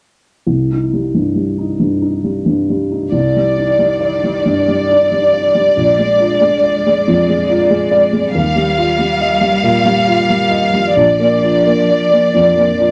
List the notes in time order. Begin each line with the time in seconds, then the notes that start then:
0.46 C2
0.71 D#4
0.93 G3
1.14 G2
1.36 G3
1.58 D#4
1.80 G2
2.02 D#4
2.24 G3
2.46 G2
2.69 G3
2.91 D#4
3.12 C2 D#3 D5
3.36 G3
3.57 D#4
3.79 G3
4.01 D5
4.24 G3
4.45 G2
4.68 G3
4.90 D#4
5.11 G3
5.34 D5
5.54 G3
5.75 A#1 G#3
5.99 G#3
6.20 F4
6.41 G#3
6.64 D5
6.86 G#3
7.08 F2
7.29 G#3
7.49 F4
7.70 G#3
7.91 D5
8.13 G#3
8.35 D#2 G3 F5
8.56 G3
8.77 F4
8.99 G3
9.20 D#5
9.41 G3
9.63 A#2
9.85 G3
10.07 F4
10.30 G3
10.50 D#5
10.73 G3
10.96 A#1 F3 D5
11.19 A#3
11.42 F4
11.66 A#3
11.89 D5
12.11 A#3
12.34 F2
12.56 A#3
12.79 F4